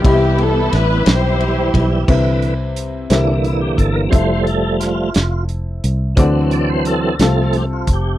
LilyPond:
<<
  \new Staff \with { instrumentName = "String section" } { \time 6/8 \key c \major \tempo 4. = 59 << { g'8 a'8 b'8 c''4 r8 | r2. | r2. | r2. | } \\ { <b e'>4. <e' g'>4. | r2. | r2. | r2. | } >> }
  \new Staff \with { instrumentName = "Grand piano" } { \time 6/8 \key c \major <g e' g' ees'' e'' b''>2. | <c' e' g' b' e''>4. <c' e' g' bes' e''>4. | <c' e' f' a' e''>2. | <c' d' fis' a' d''>4. <c' f' a'>4. | }
  \new Staff \with { instrumentName = "Grand piano" } { \clef bass \time 6/8 \key c \major c4. r4. | c4. c4. | r2. | d4. c4. | }
  \new Staff \with { instrumentName = "Tonewheel organ" } { \time 6/8 \key c \major <d e g e' g'>2. | r4. e'16 d'16 e'16 g'16 a'16 bes'16 | c''8 a'8 f'4 r4 | r8 d''16 c''16 a'4 g'16 f'16 g'8 | }
  \new Staff \with { instrumentName = "Tonewheel organ" } { \clef bass \time 6/8 \key c \major r2. | <d e b'>8 r4 <d e bes>4. | <f g a>4. r4. | <e fis c'>4. <f a c'>8 r4 | }
  \new Staff \with { instrumentName = "Fingered electric bass" } { \clef bass \time 6/8 \key c \major c,4 a,,8 b,,4 b,,8 | c,4. c,4 g,,8 | f,,4. f,,4 c,8 | d,4. c,4 f,,8 | }
  \new DrumStaff \with { instrumentName = "Drums" } \drummode { \time 6/8 <bd cymr>8 cymr8 <cymr sn>8 <cymr sn>8 cymr8 <bd cymr>8 | <cymc bd>8 hh8 hh8 <hh sn>8 hh8 <hh bd>8 | <hh bd>8 hh8 <hh sn>8 <hh sn>8 hh8 hh8 | <hh bd>8 hh8 hh8 <hh sn>8 hh8 <hh bd>8 | }
>>